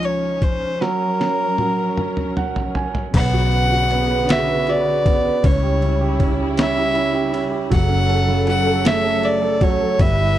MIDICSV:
0, 0, Header, 1, 6, 480
1, 0, Start_track
1, 0, Tempo, 773196
1, 502, Time_signature, 6, 3, 24, 8
1, 2902, Tempo, 760456
1, 6506, End_track
2, 0, Start_track
2, 0, Title_t, "Violin"
2, 0, Program_c, 0, 40
2, 30, Note_on_c, 0, 73, 86
2, 269, Note_on_c, 0, 72, 90
2, 278, Note_off_c, 0, 73, 0
2, 514, Note_on_c, 0, 70, 89
2, 524, Note_off_c, 0, 72, 0
2, 1476, Note_off_c, 0, 70, 0
2, 1964, Note_on_c, 0, 78, 127
2, 2676, Note_on_c, 0, 76, 102
2, 2685, Note_off_c, 0, 78, 0
2, 2910, Note_on_c, 0, 74, 100
2, 2920, Note_off_c, 0, 76, 0
2, 3392, Note_on_c, 0, 73, 93
2, 3402, Note_off_c, 0, 74, 0
2, 3868, Note_off_c, 0, 73, 0
2, 4113, Note_on_c, 0, 76, 103
2, 4622, Note_off_c, 0, 76, 0
2, 4829, Note_on_c, 0, 78, 111
2, 5279, Note_off_c, 0, 78, 0
2, 5307, Note_on_c, 0, 78, 113
2, 5549, Note_on_c, 0, 76, 113
2, 5558, Note_off_c, 0, 78, 0
2, 5787, Note_on_c, 0, 74, 95
2, 5796, Note_off_c, 0, 76, 0
2, 6030, Note_on_c, 0, 73, 98
2, 6039, Note_off_c, 0, 74, 0
2, 6266, Note_on_c, 0, 76, 118
2, 6275, Note_off_c, 0, 73, 0
2, 6506, Note_off_c, 0, 76, 0
2, 6506, End_track
3, 0, Start_track
3, 0, Title_t, "Grand piano"
3, 0, Program_c, 1, 0
3, 0, Control_c, 1, 64, 127
3, 0, Note_on_c, 1, 49, 58
3, 0, Note_on_c, 1, 56, 49
3, 0, Note_on_c, 1, 61, 53
3, 0, Note_on_c, 1, 65, 54
3, 238, Note_off_c, 1, 56, 0
3, 478, Note_off_c, 1, 49, 0
3, 479, Note_off_c, 1, 61, 0
3, 480, Note_off_c, 1, 65, 0
3, 503, Note_on_c, 1, 54, 64
3, 510, Control_c, 1, 64, 0
3, 611, Control_c, 1, 64, 127
3, 744, Note_on_c, 1, 61, 53
3, 977, Note_off_c, 1, 54, 0
3, 986, Note_on_c, 1, 54, 53
3, 1216, Note_off_c, 1, 61, 0
3, 1226, Note_on_c, 1, 61, 57
3, 1469, Note_on_c, 1, 78, 67
3, 1693, Note_off_c, 1, 78, 0
3, 1713, Note_on_c, 1, 80, 62
3, 1926, Note_off_c, 1, 54, 0
3, 1927, Note_off_c, 1, 61, 0
3, 1934, Note_off_c, 1, 80, 0
3, 1953, Note_on_c, 1, 59, 67
3, 1959, Control_c, 1, 64, 0
3, 2069, Note_on_c, 1, 66, 56
3, 2076, Control_c, 1, 64, 127
3, 2191, Note_on_c, 1, 71, 58
3, 2299, Note_off_c, 1, 66, 0
3, 2309, Note_on_c, 1, 66, 57
3, 2414, Note_off_c, 1, 59, 0
3, 2423, Note_on_c, 1, 59, 59
3, 2535, Note_off_c, 1, 71, 0
3, 2544, Note_on_c, 1, 71, 56
3, 2657, Note_off_c, 1, 66, 0
3, 2666, Note_on_c, 1, 66, 73
3, 2779, Note_off_c, 1, 71, 0
3, 2788, Note_on_c, 1, 71, 55
3, 2894, Note_off_c, 1, 66, 0
3, 2904, Note_on_c, 1, 66, 60
3, 3017, Note_off_c, 1, 71, 0
3, 3026, Note_on_c, 1, 71, 60
3, 3132, Note_off_c, 1, 59, 0
3, 3142, Note_on_c, 1, 59, 64
3, 3258, Note_off_c, 1, 71, 0
3, 3267, Note_on_c, 1, 71, 57
3, 3370, Note_off_c, 1, 66, 0
3, 3376, Note_off_c, 1, 59, 0
3, 3382, Note_off_c, 1, 71, 0
3, 3384, Note_on_c, 1, 61, 69
3, 3394, Control_c, 1, 64, 0
3, 3493, Control_c, 1, 64, 127
3, 3503, Note_on_c, 1, 67, 56
3, 3613, Note_off_c, 1, 61, 0
3, 3623, Note_on_c, 1, 61, 63
3, 3734, Note_off_c, 1, 67, 0
3, 3743, Note_on_c, 1, 67, 63
3, 3854, Note_off_c, 1, 61, 0
3, 3863, Note_on_c, 1, 61, 60
3, 3974, Note_off_c, 1, 67, 0
3, 3983, Note_on_c, 1, 67, 55
3, 4092, Note_off_c, 1, 61, 0
3, 4102, Note_on_c, 1, 61, 75
3, 4211, Note_off_c, 1, 67, 0
3, 4221, Note_on_c, 1, 67, 53
3, 4335, Note_off_c, 1, 61, 0
3, 4344, Note_on_c, 1, 61, 64
3, 4449, Note_off_c, 1, 67, 0
3, 4459, Note_on_c, 1, 67, 61
3, 4565, Note_off_c, 1, 61, 0
3, 4575, Note_on_c, 1, 61, 63
3, 4686, Note_off_c, 1, 67, 0
3, 4696, Note_on_c, 1, 67, 57
3, 4811, Note_off_c, 1, 61, 0
3, 4814, Note_on_c, 1, 54, 69
3, 4815, Note_off_c, 1, 67, 0
3, 4832, Control_c, 1, 64, 0
3, 4934, Note_on_c, 1, 61, 56
3, 4959, Control_c, 1, 64, 127
3, 5058, Note_on_c, 1, 69, 63
3, 5179, Note_on_c, 1, 49, 64
3, 5295, Note_off_c, 1, 54, 0
3, 5304, Note_on_c, 1, 54, 60
3, 5410, Note_off_c, 1, 69, 0
3, 5420, Note_on_c, 1, 69, 59
3, 5538, Note_on_c, 1, 57, 77
3, 5652, Note_off_c, 1, 69, 0
3, 5661, Note_on_c, 1, 69, 59
3, 5870, Note_off_c, 1, 61, 0
3, 5888, Note_off_c, 1, 69, 0
3, 5897, Note_on_c, 1, 69, 64
3, 6011, Note_off_c, 1, 54, 0
3, 6020, Note_on_c, 1, 54, 67
3, 6113, Note_off_c, 1, 49, 0
3, 6129, Note_off_c, 1, 69, 0
3, 6138, Note_on_c, 1, 69, 57
3, 6237, Note_off_c, 1, 57, 0
3, 6253, Note_off_c, 1, 54, 0
3, 6256, Note_off_c, 1, 69, 0
3, 6264, Note_on_c, 1, 55, 69
3, 6269, Control_c, 1, 64, 0
3, 6382, Control_c, 1, 64, 127
3, 6388, Note_on_c, 1, 64, 58
3, 6506, Note_off_c, 1, 55, 0
3, 6506, Note_off_c, 1, 64, 0
3, 6506, End_track
4, 0, Start_track
4, 0, Title_t, "String section"
4, 0, Program_c, 2, 48
4, 0, Note_on_c, 2, 53, 73
4, 0, Note_on_c, 2, 61, 66
4, 0, Note_on_c, 2, 63, 62
4, 476, Note_off_c, 2, 63, 0
4, 485, Note_off_c, 2, 53, 0
4, 504, Note_on_c, 2, 54, 69
4, 506, Note_on_c, 2, 70, 76
4, 1923, Note_off_c, 2, 61, 0
4, 1936, Note_off_c, 2, 54, 0
4, 1937, Note_off_c, 2, 70, 0
4, 1949, Note_on_c, 2, 50, 83
4, 1950, Note_on_c, 2, 49, 82
4, 1950, Note_on_c, 2, 59, 72
4, 3370, Note_off_c, 2, 49, 0
4, 3370, Note_off_c, 2, 50, 0
4, 3370, Note_off_c, 2, 59, 0
4, 3385, Note_on_c, 2, 64, 86
4, 3387, Note_on_c, 2, 55, 76
4, 3390, Note_on_c, 2, 49, 81
4, 4809, Note_off_c, 2, 64, 0
4, 4810, Note_off_c, 2, 55, 0
4, 4811, Note_off_c, 2, 49, 0
4, 4825, Note_on_c, 2, 69, 93
4, 4826, Note_on_c, 2, 49, 72
4, 4826, Note_on_c, 2, 54, 85
4, 6247, Note_off_c, 2, 49, 0
4, 6247, Note_off_c, 2, 54, 0
4, 6247, Note_off_c, 2, 69, 0
4, 6257, Note_on_c, 2, 55, 84
4, 6259, Note_on_c, 2, 71, 88
4, 6261, Note_on_c, 2, 64, 76
4, 6506, Note_off_c, 2, 55, 0
4, 6506, Note_off_c, 2, 64, 0
4, 6506, Note_off_c, 2, 71, 0
4, 6506, End_track
5, 0, Start_track
5, 0, Title_t, "Fingered electric bass"
5, 0, Program_c, 3, 33
5, 0, Note_on_c, 3, 37, 83
5, 476, Note_off_c, 3, 37, 0
5, 1950, Note_on_c, 3, 35, 107
5, 3359, Note_off_c, 3, 35, 0
5, 3385, Note_on_c, 3, 37, 108
5, 4798, Note_off_c, 3, 37, 0
5, 4823, Note_on_c, 3, 30, 109
5, 6235, Note_off_c, 3, 30, 0
5, 6258, Note_on_c, 3, 31, 112
5, 6506, Note_off_c, 3, 31, 0
5, 6506, End_track
6, 0, Start_track
6, 0, Title_t, "Drums"
6, 18, Note_on_c, 9, 42, 41
6, 81, Note_off_c, 9, 42, 0
6, 259, Note_on_c, 9, 36, 82
6, 259, Note_on_c, 9, 42, 38
6, 321, Note_off_c, 9, 36, 0
6, 321, Note_off_c, 9, 42, 0
6, 508, Note_on_c, 9, 38, 53
6, 570, Note_off_c, 9, 38, 0
6, 751, Note_on_c, 9, 38, 57
6, 813, Note_off_c, 9, 38, 0
6, 983, Note_on_c, 9, 48, 64
6, 1045, Note_off_c, 9, 48, 0
6, 1226, Note_on_c, 9, 47, 73
6, 1288, Note_off_c, 9, 47, 0
6, 1346, Note_on_c, 9, 45, 62
6, 1408, Note_off_c, 9, 45, 0
6, 1470, Note_on_c, 9, 45, 74
6, 1532, Note_off_c, 9, 45, 0
6, 1589, Note_on_c, 9, 43, 75
6, 1652, Note_off_c, 9, 43, 0
6, 1707, Note_on_c, 9, 43, 86
6, 1769, Note_off_c, 9, 43, 0
6, 1829, Note_on_c, 9, 43, 85
6, 1891, Note_off_c, 9, 43, 0
6, 1948, Note_on_c, 9, 49, 108
6, 1948, Note_on_c, 9, 51, 71
6, 1949, Note_on_c, 9, 36, 117
6, 2010, Note_off_c, 9, 49, 0
6, 2010, Note_off_c, 9, 51, 0
6, 2011, Note_off_c, 9, 36, 0
6, 2185, Note_on_c, 9, 51, 35
6, 2247, Note_off_c, 9, 51, 0
6, 2425, Note_on_c, 9, 51, 41
6, 2487, Note_off_c, 9, 51, 0
6, 2662, Note_on_c, 9, 51, 72
6, 2671, Note_on_c, 9, 38, 109
6, 2725, Note_off_c, 9, 51, 0
6, 2733, Note_off_c, 9, 38, 0
6, 2899, Note_on_c, 9, 51, 40
6, 2962, Note_off_c, 9, 51, 0
6, 3143, Note_on_c, 9, 36, 100
6, 3144, Note_on_c, 9, 51, 40
6, 3206, Note_off_c, 9, 36, 0
6, 3207, Note_off_c, 9, 51, 0
6, 3384, Note_on_c, 9, 51, 77
6, 3385, Note_on_c, 9, 36, 117
6, 3447, Note_off_c, 9, 51, 0
6, 3448, Note_off_c, 9, 36, 0
6, 3626, Note_on_c, 9, 51, 35
6, 3689, Note_off_c, 9, 51, 0
6, 3864, Note_on_c, 9, 36, 90
6, 3864, Note_on_c, 9, 51, 41
6, 3927, Note_off_c, 9, 36, 0
6, 3927, Note_off_c, 9, 51, 0
6, 4101, Note_on_c, 9, 51, 77
6, 4110, Note_on_c, 9, 38, 116
6, 4164, Note_off_c, 9, 51, 0
6, 4173, Note_off_c, 9, 38, 0
6, 4340, Note_on_c, 9, 51, 42
6, 4403, Note_off_c, 9, 51, 0
6, 4583, Note_on_c, 9, 51, 39
6, 4646, Note_off_c, 9, 51, 0
6, 4822, Note_on_c, 9, 36, 121
6, 4822, Note_on_c, 9, 51, 75
6, 4885, Note_off_c, 9, 36, 0
6, 4885, Note_off_c, 9, 51, 0
6, 5060, Note_on_c, 9, 51, 36
6, 5123, Note_off_c, 9, 51, 0
6, 5297, Note_on_c, 9, 51, 43
6, 5360, Note_off_c, 9, 51, 0
6, 5538, Note_on_c, 9, 51, 76
6, 5547, Note_on_c, 9, 38, 114
6, 5601, Note_off_c, 9, 51, 0
6, 5610, Note_off_c, 9, 38, 0
6, 5779, Note_on_c, 9, 51, 41
6, 5842, Note_off_c, 9, 51, 0
6, 6017, Note_on_c, 9, 51, 41
6, 6018, Note_on_c, 9, 36, 99
6, 6080, Note_off_c, 9, 51, 0
6, 6081, Note_off_c, 9, 36, 0
6, 6259, Note_on_c, 9, 36, 120
6, 6260, Note_on_c, 9, 51, 72
6, 6322, Note_off_c, 9, 36, 0
6, 6323, Note_off_c, 9, 51, 0
6, 6506, End_track
0, 0, End_of_file